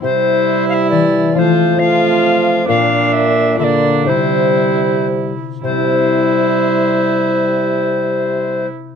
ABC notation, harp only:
X:1
M:3/4
L:1/8
Q:1/4=122
K:Cmix
V:1 name="Harp"
[CEG]6 | [CFA]2 [CFA]4 | [DFB]4 [DFB]2 | [CEG]6- |
[CEG]6- | [CEG]6 |]
V:2 name="Harp" clef=bass
C,4 E,2 | F,6 | B,,4 D,2 | C,6 |
[C,CEGe]6- | [C,CEGe]6 |]